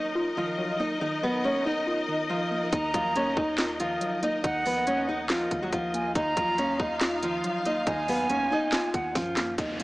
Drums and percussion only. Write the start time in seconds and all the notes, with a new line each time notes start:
2.73 kick, closed hi-hat
2.94 kick, closed hi-hat
3.16 closed hi-hat
3.37 kick
3.58 snare, clap, closed hi-hat
3.80 closed hi-hat
4.01 closed hi-hat
4.23 closed hi-hat
4.44 kick, closed hi-hat
4.66 open hi-hat
4.87 closed hi-hat
5.30 snare, clap, closed hi-hat
5.51 kick, closed hi-hat
5.73 kick, closed hi-hat
5.94 closed hi-hat
6.15 kick, closed hi-hat
6.37 kick, closed hi-hat
6.58 closed hi-hat
6.80 kick
7.01 snare, clap, closed hi-hat
7.23 closed hi-hat
7.44 closed hi-hat
7.65 closed hi-hat
7.87 kick, closed hi-hat
8.08 open hi-hat
8.30 closed hi-hat
8.72 snare, clap, closed hi-hat
8.94 kick, closed hi-hat
9.15 kick, snare, closed hi-hat
9.37 snare, clap, closed hi-hat
9.58 kick, closed hi-hat
9.80 closed hi-hat